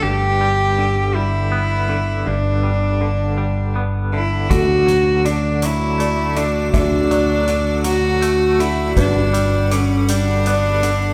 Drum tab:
HH |------|------|xxxxxx|xxxxxx|
BD |------|------|o-----|o-----|

HH |xxxxxx|
BD |o-----|